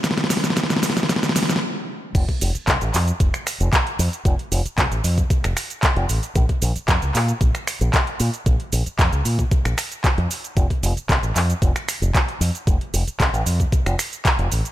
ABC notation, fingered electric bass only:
X:1
M:4/4
L:1/16
Q:1/4=114
K:Bblyd
V:1 name="Fingered electric bass" clef=bass
z16 | F,,, z F,,, z C,, A,,, F,, z F,,, z2 F,,, z2 F,, z | F,,, z F,,, z C,, A,,, F,, z2 F,,, z3 F,,, A,,, z | B,,, z B,,, z F,, _D,, B,, z B,,, z2 B,,, z2 B,, z |
B,,, z B,,, z F,, _D,, B,, z2 B,,, z3 F,, z2 | F,,, z F,,, z C,, A,,, F,, z F,,, z2 F,,, z2 F,, z | F,,, z F,,, z C,, A,,, F,, z2 F,,, z3 F,,, A,,, z |]